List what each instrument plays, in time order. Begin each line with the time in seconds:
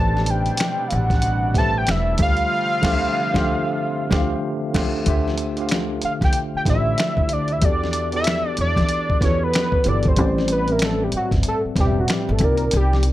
Already playing: upright bass A1, analog synth pad B2 C3 G3 D4, tine electric piano A3 G4 B4, analog synth lead A5
0.00 tine electric piano C5 D5
0.17 snare
0.26 analog synth lead G5, closed hi-hat
0.46 closed hi-hat
0.57 finger snap, snare, closed hi-hat
0.88 upright bass A1, analog synth lead F5, closed hi-hat
0.93 analog synth lead F#5
1.10 kick, snare, closed hi-hat
1.22 closed hi-hat
1.54 tine electric piano A3 G4 B4 C5, analog synth lead A5, kick, snare, closed hi-hat
1.59 tine electric piano E5
1.78 analog synth lead G5
1.87 upright bass E1, analog synth lead E5, finger snap, snare, closed hi-hat
2.18 upright bass D2, tine electric piano D3 A3 F4 G4 C5, analog synth pad F3 C4 F4, kick, closed hi-hat
2.22 tine electric piano D#5, analog synth lead F5
2.29 tine electric piano F5
2.37 closed hi-hat
2.81 upright bass D2, tine electric piano D3 A3 F4 G4 C5, kick, snare, crash
2.93 tine electric piano E5
3.33 upright bass D2, tine electric piano D3 A3 F4 G4 C5, kick, snare
3.38 tine electric piano E5
4.09 upright bass D2, tine electric piano D3 A3 F4 G4 C5, kick, snare
4.14 tine electric piano F5
4.73 upright bass D2, tine electric piano D3 A3 F4 G4 C5, kick, snare, crash
4.78 tine electric piano F5
5.05 upright bass D2, tine electric piano D3 A3 F4 G4, kick, closed hi-hat
5.09 tine electric piano C5 E5
5.28 snare
5.38 closed hi-hat
5.57 tine electric piano D3 A3 F4 G4 C5, closed hi-hat
5.62 tine electric piano F5
5.69 finger snap, snare, closed hi-hat
6.02 analog synth lead F5, muted upright bass stroke, closed hi-hat
6.21 upright bass C2, analog synth lead G5, kick, snare, closed hi-hat
6.33 closed hi-hat
6.55 analog synth lead G5, muted upright bass stroke
6.65 upright bass A1, tine electric piano D3 A3 E4 G4 C5, kick, snare, closed hi-hat
6.69 tine electric piano F4 D5, analog synth lead E5
6.98 finger snap, snare, closed hi-hat
7.17 upright bass C2, kick
7.29 upright bass D2, closed hi-hat
7.33 analog synth lead D5
7.48 closed hi-hat
7.52 analog synth lead E5
7.61 upright bass E2, tine electric piano E3 B3 F#4 G4 A4, analog synth lead D5, kick, closed hi-hat
7.66 tine electric piano D5
7.84 snare
7.93 closed hi-hat
8.12 tine electric piano E3 B3 F#4 G4, closed hi-hat
8.16 tine electric piano A4 D5, analog synth lead E5
8.24 finger snap, snare, closed hi-hat
8.57 upright bass E2, analog synth lead D5, closed hi-hat
8.76 upright bass E3, kick, snare, closed hi-hat
8.89 closed hi-hat
9.10 kick
9.21 upright bass E2, tine electric piano E3 B3 F#4 G4 A4, analog synth lead C#5, kick, snare, closed hi-hat
9.25 tine electric piano B4
9.43 analog synth lead B4
9.54 finger snap, snare, closed hi-hat
9.72 kick
9.84 upright bass G1, tine electric piano E3 B3 F#4 G4, closed hi-hat
9.88 tine electric piano A4 D5, analog synth lead D5
10.03 kick, closed hi-hat
10.08 analog synth lead C5
10.16 upright bass A1, tine electric piano A2 G3 C4 C5, kick, closed hi-hat
10.21 tine electric piano D5
10.38 snare
10.48 analog synth lead B4, closed hi-hat
10.67 tine electric piano A2 G3 C4 B4, closed hi-hat
10.72 analog synth lead A#4, tine electric piano E5
10.79 finger snap, snare, closed hi-hat
10.84 analog synth lead A4
11.04 analog synth lead G4
11.12 muted upright bass stroke, closed hi-hat
11.16 analog synth lead F#4
11.31 upright bass G1, kick, snare, closed hi-hat
11.43 closed hi-hat
11.48 analog synth lead A4
11.65 muted upright bass stroke
11.75 upright bass E1, tine electric piano A2 G3 C4 B4, kick, snare, closed hi-hat
11.80 analog synth lead G4, tine electric piano D5
11.87 tine electric piano E5
12.00 analog synth lead F#4
12.08 analog synth lead G4, finger snap, snare, closed hi-hat
12.29 upright bass G1, analog synth lead A4
12.39 upright bass C2, tine electric piano C3 C4 D#4 F4, kick, closed hi-hat
12.43 tine electric piano A#4 D5, analog synth lead A#4
12.57 closed hi-hat
12.71 upright bass C2, closed hi-hat
12.76 analog synth lead G4
12.93 snare
13.03 closed hi-hat